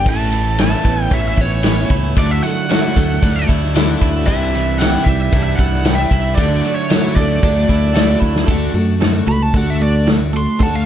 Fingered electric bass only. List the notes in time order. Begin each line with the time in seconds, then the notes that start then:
0.06 A1
0.85 A1
1.12 A1
1.37 A1
1.90 C#2
2.17 D2
2.97 D2
3.23 D2
3.49 D2
4.01 D2
4.28 C2
5.06 C2
5.33 C2
5.59 C2
6.11 C2
6.37 D2
7.16 D2
7.43 D2
7.69 D2
8.21 D2
8.48 D2
8.74 F#2
9.27 C#2
9.54 D2
10.61 D2